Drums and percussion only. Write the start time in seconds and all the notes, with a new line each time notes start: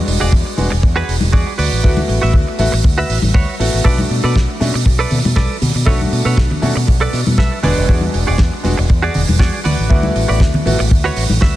0.08 open hi-hat
0.32 kick
0.58 open hi-hat, high conga
0.83 kick
1.09 open hi-hat
1.21 high conga
1.33 kick
1.59 open hi-hat
1.84 kick
1.97 high conga
2.09 open hi-hat
2.34 kick
2.59 open hi-hat, high conga
2.84 kick
3.10 open hi-hat
3.22 high conga
3.35 kick
3.60 open hi-hat
3.85 kick
3.98 high conga
4.11 open hi-hat
4.36 kick, snare
4.61 snare, open hi-hat, high conga
4.86 kick
5.11 open hi-hat, low conga
5.25 high conga
5.36 kick, snare
5.62 open hi-hat, low conga
5.87 kick
6.01 high conga
6.13 open hi-hat
6.37 kick, snare
6.51 low conga
6.62 open hi-hat, high conga
6.88 kick
7.13 snare, open hi-hat
7.27 high conga
7.38 kick, snare
7.63 open hi-hat, low conga
7.89 kick
8.01 high conga
8.14 open hi-hat
8.38 kick, snare
8.64 snare, open hi-hat, high conga
8.90 kick
9.14 open hi-hat, low conga
9.29 high conga
9.40 kick, snare
9.65 open hi-hat, low conga
9.90 kick
10.03 high conga
10.16 open hi-hat
10.40 kick, snare
10.54 low conga
10.66 open hi-hat, high conga
10.91 kick
11.16 snare, open hi-hat
11.30 high conga
11.42 kick, snare